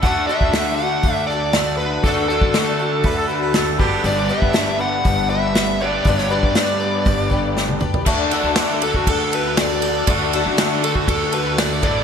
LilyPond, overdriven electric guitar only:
\new Staff \with { instrumentName = "Overdriven electric guitar" } { \time 4/4 \key d \major \tempo 4 = 119 <d a d' fis'>1 | <d a d' fis'>2.~ <d a d' fis'>8 <g, d g b d' g'>8~ | <g, d g b d' g'>2.~ <g, d g b d' g'>8 <g, d g b d' g'>8~ | <g, d g b d' g'>2.~ <g, d g b d' g'>8 r8 |
<d a d' fis'>1 | <d a d' fis'>2.~ <d a d' fis'>8 <a, d a d' e'>8 | }